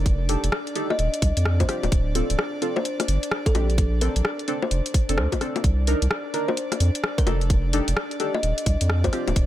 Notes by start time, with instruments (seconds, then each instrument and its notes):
Already playing: sub bass F1, analog synth pad D4 D5
0.06 kick, closed hi-hat
0.29 synth stab D4 D#4 G4 A4, open hi-hat
0.44 sub bass F1, closed hi-hat
0.52 cross-stick
0.67 closed hi-hat
0.76 synth stab D4 D#4 G4 A4, open hi-hat
0.90 kalimba D#5, cross-stick, high bongo
0.99 sub bass D#1, closed hi-hat
1.14 closed hi-hat
1.22 sub bass C2, kick, open hi-hat
1.37 sub bass F2, closed hi-hat
1.45 cross-stick
1.60 kalimba C5, kick, closed hi-hat, high bongo
1.69 synth stab C4 F4 G4, cross-stick, open hi-hat
1.83 sub bass D1, closed hi-hat, high bongo
1.92 sub bass D1, kick, closed hi-hat
2.15 synth stab C4 F4 A4, open hi-hat
2.30 sub bass D1, closed hi-hat
2.39 cross-stick
2.62 synth stab C4 F4 A4, open hi-hat
2.76 kalimba C5, high bongo
2.85 closed hi-hat
3.00 cross-stick, closed hi-hat, high bongo
3.08 sub bass G1, open hi-hat
3.23 closed hi-hat
3.31 cross-stick
3.46 kalimba A4, kick, closed hi-hat
3.55 sub bass A#1, synth stab C4 D4 G4, open hi-hat, high bongo
3.70 closed hi-hat
3.78 kick, closed hi-hat
4.01 synth stab C4 D4 A4, kalimba A#4, open hi-hat
4.16 sub bass A#1, closed hi-hat
4.25 cross-stick
4.39 closed hi-hat
4.48 synth stab C4 D4 A4, open hi-hat
4.63 kalimba C5, cross-stick, high bongo
4.71 sub bass F1, closed hi-hat
4.86 closed hi-hat
4.94 kick, open hi-hat
5.09 sub bass F1, synth stab C4 D4 A4, closed hi-hat
5.18 sub bass D2, kalimba C5, cross-stick
5.32 kick, closed hi-hat, high bongo
5.41 synth stab C4 D4 A4, cross-stick, open hi-hat
5.56 closed hi-hat, high bongo
5.64 sub bass C2, analog synth pad D4 D5, kick, closed hi-hat
5.87 synth stab D4 D#4 A#4, open hi-hat
6.02 sub bass C2, closed hi-hat
6.11 cross-stick
6.34 synth stab D4 D#4 A#4, open hi-hat
6.48 kalimba C5, high bongo
6.57 closed hi-hat
6.72 cross-stick, closed hi-hat, high bongo
6.80 sub bass F2, open hi-hat
6.95 closed hi-hat
7.04 cross-stick
7.18 kalimba A#4, kick, closed hi-hat
7.27 sub bass F1, synth stab D4 D#4 A4, kalimba A#4, open hi-hat, high bongo
7.41 closed hi-hat
7.50 kick, closed hi-hat
7.73 synth stab D4 D#4 G4 A4, open hi-hat
7.88 sub bass F1, closed hi-hat
7.97 cross-stick
8.11 closed hi-hat
8.20 synth stab D4 D#4 G4 A4, open hi-hat
8.34 kalimba D#5, cross-stick, high bongo
8.43 sub bass D#1, closed hi-hat
8.58 closed hi-hat
8.66 sub bass C2, kick, open hi-hat
8.81 sub bass F2, closed hi-hat
8.90 cross-stick
9.04 kalimba C5, kick, closed hi-hat, high bongo
9.13 synth stab C4 F4 G4, cross-stick, open hi-hat
9.28 sub bass D1, closed hi-hat, high bongo
9.36 sub bass D1, kick, closed hi-hat